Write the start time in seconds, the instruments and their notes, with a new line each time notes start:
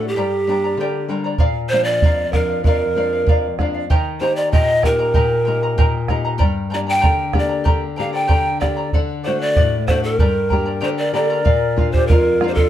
Already playing: nylon-string guitar A2 A3 F#4
0.01 charango D5 F#5
0.08 pan flute G4
0.16 nylon-string guitar G2, charango G4 A#4 D5 G5 A#5
0.47 nylon-string guitar G3 A#3 D4, charango A#4 D5 G5 A#5
0.64 charango A#4 D5 A#5
0.77 nylon-string guitar D3, charango G4 A#4 D5 G5 A#5
1.08 nylon-string guitar G3 A#3 D4, charango A#4 D5 G5 A#5
1.24 charango A#4 D5 A#5
1.38 nylon-string guitar A#2, charango A#4 D5 F5, bombo low
1.69 nylon-string guitar F3, charango A#4 D5 F5, pan flute C5
1.73 nylon-string guitar A#3 D4
1.84 pan flute D5, charango D5 F5
2.02 nylon-string guitar F2, charango A#4 D5 F5, bombo low
2.33 nylon-string guitar F3 A#3 D4, pan flute A#4, charango A#4 D5 F5, bombo rim, bombo low
2.49 charango D5 F5
2.64 nylon-string guitar F2, pan flute A#4, charango A#4 D5 F5, bombo low
2.95 nylon-string guitar F3 A#3 D4, charango A#4 D5 F5
3.13 charango D5 F5
3.26 nylon-string guitar F2, charango A#4 D5 F5, bombo low
3.59 nylon-string guitar F3 A#3 D4, charango A#4 D5 F5, bombo rim, bombo low
3.74 charango D5 F5
3.90 nylon-string guitar D#3, charango G4 A#4 D#5 G5 A#5, bombo low
4.20 nylon-string guitar A#3 D#4 G4, charango A#4 D#5 G5 A#5, pan flute C5
4.36 charango A#4 D#5 A#5, pan flute D5
4.52 nylon-string guitar A#2, charango G4 A#4 D#5 G5 A#5, pan flute D#5, bombo low
4.82 nylon-string guitar A#3 D#4 G4, charango A#4 D#5 G5 A#5, pan flute A#4, bombo rim, bombo low
4.99 charango A#4 D#5 A#5
5.14 nylon-string guitar A#2, charango G4 A#4 D#5 G5 A#5, bombo low
5.45 nylon-string guitar A#3 D#4 G4, charango A#4 D#5 G5 A#5
5.63 charango A#4 D#5 A#5
5.78 nylon-string guitar A#2, charango G4 A#4 D#5 G5 A#5, bombo low
6.08 nylon-string guitar A#3 D#4 G4, charango A#4 D#5 G5 A#5, bombo rim, bombo low
6.25 charango A#4 D#5 A#5
6.38 nylon-string guitar G2, charango G4 A#4 D5 G5 A#5, bombo low
6.70 nylon-string guitar A#3 D4, charango A#4 D5 G5 A#5
6.74 nylon-string guitar G4, pan flute D5
6.87 charango A#4 D5 A#5, pan flute G5
7.01 nylon-string guitar D3, charango G4 A#4 D5 G5 A#5, bombo low
7.33 nylon-string guitar A#3 D4 G4, charango A#4 D5 G5 A#5, bombo rim, bombo low
7.39 pan flute D5
7.49 charango A#4 D5 A#5
7.64 nylon-string guitar D3, charango G4 A#4 D5 G5 A#5, bombo low
7.96 nylon-string guitar A#3 D4 G4, charango A#4 D5 G5 A#5, pan flute F5
8.13 charango A#4 D5 A#5, pan flute G5
8.27 nylon-string guitar D3, charango G4 A#4 D5 G5 A#5, bombo low
8.60 nylon-string guitar A#3 D4 G4, charango A#4 D5 G5 A#5, pan flute D5, bombo rim, bombo low
8.77 charango A#4 D5 A#5
8.93 nylon-string guitar D3, charango A4 D5 F#5, bombo low
9.23 nylon-string guitar A3, charango A4 D5 F#5, pan flute C5
9.27 nylon-string guitar D4 F#4
9.39 charango D5 F#5, pan flute D5
9.55 nylon-string guitar A2, charango A4 D5 F#5, bombo low
9.87 nylon-string guitar A3 D4 F#4, charango A4 D5 F#5, pan flute C5, bombo rim, bombo low
10.03 pan flute A4, charango D5 F#5
10.16 charango G4 A#4 D5 G5 A#5, pan flute A#4, bombo low
10.21 nylon-string guitar G2
10.49 nylon-string guitar A#3 D4 G4, charango A#4 D5 G5 A#5, bombo low
10.66 charango A#4 D5 A#5
10.80 nylon-string guitar D3, charango G4 A#4 D5 G5 A#5, quena G4, pan flute C5
10.98 quena A#4, pan flute D5
11.13 nylon-string guitar A#3 D4 G4, quena A4, charango A#4 D5 G5 A#5, pan flute D5
11.29 quena A#4, charango A#4 D5 A#5
11.44 nylon-string guitar A#2, charango A#4 D5 F5, bombo low
11.77 nylon-string guitar A#3 D4 F4, charango A#4 D5 F5, bombo low
11.92 quena G4, pan flute C5, charango D5 F5, bombo low
12.07 nylon-string guitar F2, quena F4, pan flute A#4, charango A#4 D5 F5, bombo low
12.40 nylon-string guitar A#3 D4 F4, charango A#4 D5 F5, bombo rim
12.48 quena G4, pan flute C5
12.54 quena F4, pan flute A4, charango F5, bombo low
12.59 charango D5